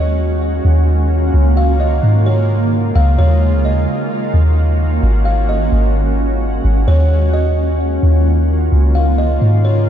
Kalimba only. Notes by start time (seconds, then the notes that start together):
Already playing: D#5
1.57 F5
1.80 D#5
2.26 C#5
2.96 F5
3.19 C#5
3.65 D#5
5.25 F5
5.49 D#5
6.88 C#5
7.33 D#5
8.95 F5
9.18 D#5
9.65 C#5